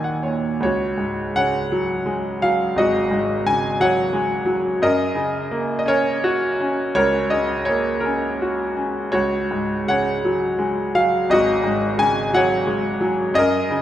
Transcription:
grand piano
Already playing: D#2 A#2 D#3 F#3 F#4 D#5 G#5
0.04 F#5
0.23 A#2 C#5
0.60 C#2 C#5
0.65 F#4
0.98 G#2
1.36 C#3 C#5 F#5
1.72 F#3
2.06 G#3
2.42 F#3 F5
2.76 G#1 F#4 D#5
3.11 G#2
3.46 C#3 G#5
3.80 F#3 C#5 F#5
4.13 G#3
4.46 F#3
4.82 F#2 A#4 D#5
5.15 C#3
5.51 A#3
5.79 D#5
5.86 C#4 A#4 C#5
6.24 F#4
6.60 C#4
6.95 C#2 A#4 C#5
7.30 C#3 D#5
7.65 A#3 C#5
8.00 A#4
8.05 C#4
8.42 F#4
8.77 C#4
9.12 C#2 F#4 C#5
9.51 G#2
9.88 C#3 C#5 F#5
10.25 F#3
10.59 G#3
10.95 F#3 F5
11.29 G#1 F#4 D#5
11.64 G#2
11.97 C#3 G#5
12.33 F#3 C#5 F#5
12.67 G#3
13.01 F#3
13.34 F#2 A#4 D#5
13.70 C#3

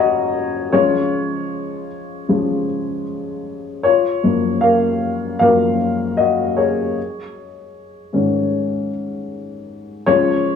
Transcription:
upright piano
Already playing: F4 F#4 C#5 D#5 A#5
0.72 C#3 F3 G#3 F4 C#5
2.28 C#3 F3 G#3
3.83 F4 C#5
4.23 F#2 F3 A#3
4.61 A#4 F5
5.39 F#2 F3 A#3 A#4 F5
6.17 F#4 D#5
6.57 G#4 C#5
8.13 G#2 D#3 C#4
10.07 C#3 F3 G#3 F4 C#5

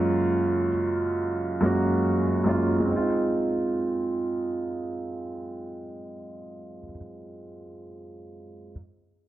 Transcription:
felt piano
Already playing: F#2 G#3 A#3 C#4 F4
1.61 F#2 G#3 A#3 C#4
1.65 F#4
2.44 F#2 G#3 A#3 C#4
2.48 F4
2.80 G#3
2.85 C4
2.91 D#4
2.96 F4

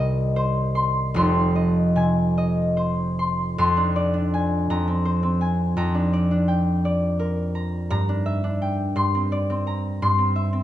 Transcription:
harp
Already playing: C2 C3 G3 D#5 G5 A#5 C6
0.36 C5
0.75 C6
1.14 F1 F2 C6
1.56 D#5
1.96 C3 G#5
2.38 D#5
2.77 C5
3.19 C6
3.58 F2 C6
3.77 D4
3.96 D5
4.14 D4
4.34 G#5
4.70 F2 A#5
4.88 C4
5.05 C5
5.23 C4
5.41 G#5
5.77 F2 A#5
5.95 D4
6.13 D5
6.31 D4
6.48 G5
6.85 D5
7.19 A#4
7.55 A#5
7.90 G2 A#5
8.09 D4
8.26 E5
8.44 D4
8.62 G5
8.96 G2 C6
9.15 C4
9.32 D5
9.50 C4
9.67 A#5
10.02 G2 C6
10.18 C4
10.36 E5
10.53 C4

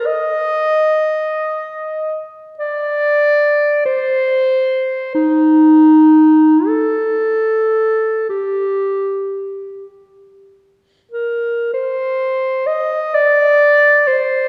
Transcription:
clarinet
0.06 D#5
2.59 D5
3.86 C5
5.15 D#4
6.67 A4
8.29 G4
11.12 A#4
11.73 C5
12.67 D#5
13.14 D5
14.08 C5

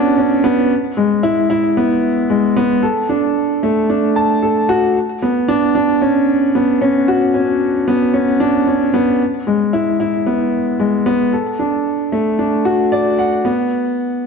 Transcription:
grand piano
Already playing: B3 C#4 D4 F#4
0.17 C#4
0.44 B3
0.97 G#3
1.23 E4
1.50 E4
1.77 B3
2.30 G#3
2.56 B3
2.83 A4
3.09 D4
3.63 A3
3.90 D4
4.16 A5
4.42 A4
4.69 F#4
5.22 B3
5.48 D4
5.75 D4
6.02 C#4
6.55 B3
6.82 C#4
7.08 F#4
7.34 C#4
7.88 B3
8.14 C#4
8.40 D4
8.67 C#4
8.94 B3
9.47 G#3
9.73 E4
10.00 E4
10.26 B3
10.80 G#3
11.06 B3
11.33 A4
11.59 D4
12.12 A3
12.39 D4
12.65 F#4
12.92 D5
13.19 F#5
13.45 B3

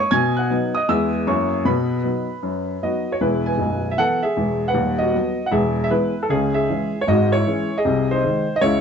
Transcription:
grand piano
Already playing: C#6
0.00 C#5
0.11 B2 G#5 G#6
0.37 F#5 F#6
0.50 F#3 B3 D#4
0.75 D#5 D#6
0.88 E2 G#3 B3 E4 E5 E6
1.27 F#2 F#3 A#3 E4 C#5 C#6
1.65 B2 B4 B5
2.04 F#3 B3 D#4
2.43 F#2
2.83 F#3 B3 D#4 F#4 D#5
3.12 C#5
3.21 E1 E2 E4 B4
3.46 B4 G#5
3.58 B0 B1
3.91 E5
3.98 E3 B3 A4 F#5
4.23 G#4 E5
4.37 E1 E2
4.68 B4 F#5
4.74 D#1 D#2
4.98 F#4 D#5
5.14 F#3 B3
5.46 F#5
5.51 E1 E2 G#4 E5
5.84 E5
5.90 E3 G#3 B3 E4 B4
6.23 A4
6.29 C#2 C#3 C#4 G#4
6.54 G#4 E5
6.70 E3 G#3 C#4
7.01 C#5
7.07 G#1 G#2 F#4 D#5
7.32 E4 C#5
7.47 E3 G#3 C#4
7.78 G#4 D#5
7.85 C2 C3
8.11 D#4 C5
8.24 D#3 G#3 D#4
8.56 D#5
8.61 C#2 C#3 E4 C#5

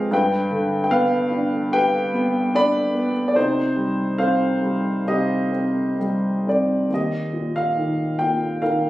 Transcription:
grand piano
Already playing: G#3 C4 F4 G4 G#4 B4 D#5 F5 G5
0.11 G2 B4 G5
0.50 D3
0.84 G5
0.91 B3 B4 F5
1.31 D4
1.72 G4 B4 G5
2.13 B3
2.54 D4 D5 B5
2.95 B3
3.28 D5
3.35 C3 D#4 C5
3.76 G3
4.18 C4 C5 F5
4.63 G3
5.07 C3 G4 D#5
5.52 C4
6.00 G3
6.47 C4 D5
6.90 D#2 G4
6.94 D#5
7.33 A#2
7.56 F5
7.77 D#3
8.19 A#2 G5
8.62 D#3 A#4 F5

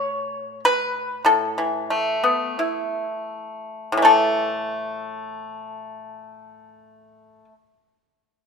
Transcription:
pipa
Already playing: A2 C#5
0.65 B4
1.25 A2 A4
1.58 E3
1.90 A3
2.24 B3
2.59 E4
3.92 A2
3.97 E3
4.02 A3 A4

